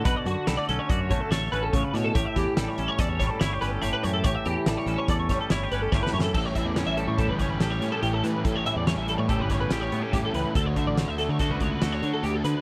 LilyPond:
<<
  \new Staff \with { instrumentName = "Clean electric guitar" } { \time 5/4 \key a \mixolydian \tempo 4 = 143 b'16 d''16 fis'8 a'16 d''16 a'16 cis''16 d''16 cis''16 cis''16 a'16 cis''8 b'16 a'16 cis''16 b'16 cis''16 a'16 | cis''16 e''16 g'8 a'16 cis''16 a'16 cis''16 d''16 cis''16 cis''16 a'16 cis''8 b'16 a'16 cis''16 b'16 cis''16 a'16 | cis''16 e''16 g'8 a'16 cis''16 a'16 cis''16 d''16 cis''16 cis''16 a'16 cis''8 b'16 a'16 cis''16 b'16 cis''16 a'16 | a'16 cis''16 e''16 d''16 cis''16 e''16 a'16 cis''16 a'16 b'16 cis''16 b'16 a'16 cis''8 a'16 g'16 a'16 b'8 |
a'16 cis''16 e''16 d''16 cis''16 e''16 a'16 cis''16 a'16 b'16 cis''16 b'16 a'16 cis''8 a'16 g'16 a'16 b'8 | a'16 cis''16 e''16 d''16 cis''16 e''16 a'16 cis''16 a'16 b'16 cis''16 b'16 a'16 cis''8 a'16 g'16 a'16 b'8 | }
  \new Staff \with { instrumentName = "Overdriven electric guitar" } { \time 5/4 \key a \mixolydian r1 r4 | r1 r4 | r1 r4 | <a, e g cis' g'>8 <g cis' g'>8 <e g cis' g'>4 <a, e g cis' g'>8 <g cis' g'>8 <e g cis' g'>8 <g cis' g'>8 <a, e g cis' g'>8 <g cis' g'>8 |
<a, e g cis' g'>8 <g cis' g'>8 <e g cis' g'>4 <a, e g cis' g'>8 <g cis' g'>8 <e g cis' g'>8 <g cis' g'>8 <a, e g cis' g'>8 <g cis' g'>8 | <d a d' fis'>8 <a d' fis'>8 <d a d' fis'>4 <d a d' fis'>8 <a d' fis'>8 <d a d' fis'>8 <a d' fis'>8 <d a d' fis'>8 <a d' fis'>8 | }
  \new Staff \with { instrumentName = "Clean electric guitar" } { \time 5/4 \key a \mixolydian << { fis'4 g16 a16 cis'8 fis'8 a8 a'8 cis'4. | g'4 g8 cis'8 a'8 g8 e'16 g'16 cis'8 g'4 | g'4 g8 cis'8 a'8 g8 e'16 g'16 cis'8 g'4 | r4 cis'8 g8 g'8 cis'8 g'8 cis'4. |
r4 cis'8 g8 g'8 cis'8 g'8 b16 cis'4~ cis'16 | r4. a8 fis'4 fis'2 | } \\ { <b, d>8 d2.~ d8 cis8 b,8 | a,8 e2.~ e8 a,8 e8 | a,8 e2.~ e8 a,8 e8 | a,8 e2.~ e8 a,8 e8 |
a,8 e2.~ e8 a,8 e8 | d,8 d2.~ d8 d,8 d8 | } >> }
  \new Staff \with { instrumentName = "Fingered electric bass" } { \clef bass \time 5/4 \key a \mixolydian b,,16 r16 fis,16 r16 b,,16 r16 b,,16 r16 fis,8 b,,16 r16 a,,8 a,,8 a,,16 r16 a,8 | a,,16 r16 e,16 r16 a,,16 r16 a,,16 r16 e,8 a,,16 r16 g,,8 g,,8 g,,16 r16 fis,8 | a,,16 r16 e,16 r16 a,,16 r16 a,,16 r16 e,8 a,,16 r16 g,,8 g,,8 g,,16 r16 fis,8 | a,,8 r16 e,8 a,,8 a,8 g,,8. a,,8 a,16 r16 a,,8 a,16 r16 |
a,,8 r16 e,8 a,,8 a,8 g,,8. a,,8 a,16 r16 a,,8 cis,16 r16 | d,8 r16 a,,8 d,8 d8 cis,8. d,8 d16 r16 d,8 d16 r16 | }
  \new DrumStaff \with { instrumentName = "Drums" } \drummode { \time 5/4 <hh bd>8 hh8 <hh sn>8 hh8 <hh bd>8 <hh bd>8 <hh sn>8 hh8 <hh bd>8 <hh sn>8 | <hh bd>8 <hh bd sn>8 <hh sn>8 hh8 <hh bd sn>8 <hh bd sn>8 <hh sn>8 <hh sn>8 hh8 hh8 | <hh bd>8 hh8 <hh sn>8 hh8 <hh bd sn>8 <hh bd sn>8 <hh sn>8 <hh sn>8 \tuplet 3/2 { <bd sn>8 sn8 sn8 } | <cymc bd>8 <hh bd>8 <hh sn>8 hh8 <hh bd>8 <hh bd sn>8 <hh sn>8 <hh sn>8 hh8 hh8 |
<hh bd>8 hh8 <hh sn>8 hh8 <hh bd>8 <hh bd sn>8 <hh sn>8 hh8 <hh bd>8 hh8 | <hh bd>8 <hh bd>8 <hh sn>8 <hh sn>8 <hh bd sn>8 <hh bd>8 <hh sn>8 hh8 hh8 hh8 | }
>>